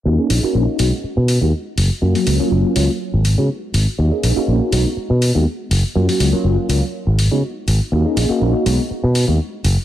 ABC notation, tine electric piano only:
X:1
M:4/4
L:1/16
Q:"Swing 16ths" 1/4=122
K:Cblyd
V:1 name="Tine electric piano"
[B,DEG] [B,DEA]2 [B,DEG]3 [^G,=B,^D^F] z4 [G,B,DF] z4 | [G,B,DF] [G,B,DG]2 [G,B,DF]3 [G,B,DF] z4 [A,CEG] z4 | [B,DEG] [B,DEA]2 [B,DEG]3 [^G,=B,^D^F] z4 [G,B,DF] z4 | [G,B,DF] [G,B,DG]2 [G,B,DF]3 [G,B,DF] z4 [A,CEG] z4 |
[B,DEG] [B,DEA]2 [B,DEG]3 [^G,=B,^D^F] z4 [G,B,DF] z4 |]